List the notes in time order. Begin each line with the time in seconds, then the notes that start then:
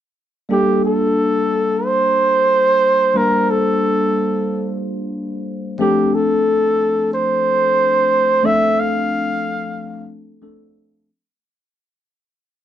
0.49 G3 A#3 D4 F4 G4 A4
0.85 A4
1.86 C5
3.14 G3 A#3 D4 F4 A#4 C5
3.50 A4
5.78 F3 A3 C4 D4 G4 A4
6.15 A4
7.14 C5
8.43 F3 A3 C4 D4 A4 E5
8.80 F5
10.42 F3 A3 C4 D4 A4